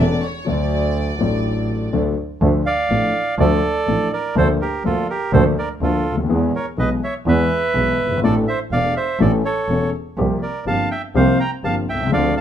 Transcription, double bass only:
0.00 0.19 E1 medium
0.47 1.16 D2 medium
1.19 1.89 A1 medium
1.93 2.13 D2 medium
2.41 2.62 D2 medium
2.90 3.10 A1 medium
3.38 3.59 D2 loud
3.87 4.08 A1 medium
4.36 4.56 D2 loud
4.84 5.04 D2 medium
5.32 5.53 D2 loud
5.81 6.01 D2 medium
6.05 6.29 D2 medium
6.29 6.50 E2 loud
6.78 6.98 B1 medium
7.26 7.46 E2 medium
7.75 7.95 B1 medium
7.99 8.22 G1 medium
8.23 8.43 A1 medium
8.71 8.92 E1 medium
9.20 9.40 A1 medium
9.69 9.89 E1 medium
10.18 10.38 C2 medium
10.66 10.86 G1 medium
11.15 11.35 C2 medium
11.64 11.84 G1 medium
11.88 12.12 C2 medium
12.12 12.32 D2 medium

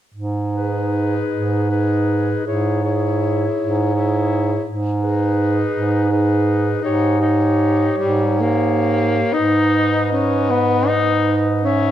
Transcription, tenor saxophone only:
0.54 1.68 D#4 soft
1.70 2.44 D#4 soft
2.46 2.83 E4 soft
2.83 3.93 E4 soft
3.94 4.64 E4 soft
5.00 6.07 D#4 soft
6.11 6.80 D#4 soft
6.81 7.19 D#4 soft
7.20 7.97 D#4 soft
7.97 8.42 G3 medium
8.40 9.34 A#3 medium
9.33 10.11 D#4 medium
10.12 10.52 C#4 soft
10.50 10.89 B3 medium
10.87 11.46 D#4 soft
11.63 11.91 C#4 medium

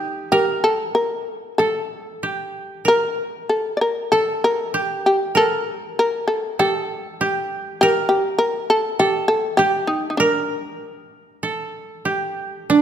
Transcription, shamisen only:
0.00 0.28 D#4 medium
0.32 0.61 G4 medium
0.64 0.93 A4 medium
0.95 1.29 A#4 medium
1.29 1.54 A4 medium
1.58 2.50 A4 medium
2.88 3.47 A#4 medium
3.49 3.72 A4 medium
3.77 3.81 D5 soft
3.81 4.10 A#4 medium
4.12 4.41 A4 medium
4.44 5.02 A#4 medium
5.06 5.35 G4 medium
5.37 5.74 A4 medium
5.74 5.95 G4 medium
5.99 6.27 A#4 medium
6.28 6.57 A4 medium
6.60 6.86 G4 medium
6.86 7.47 A4 medium
7.81 8.08 G4 medium
8.09 8.38 G4 medium
8.38 8.68 A#4 medium
8.70 8.98 A4 medium
9.00 9.28 G4 medium
9.28 9.57 A4 medium
9.57 9.87 G4 medium
9.87 10.09 D#4 medium
10.10 10.17 D#4 soft
10.17 12.01 D4 medium

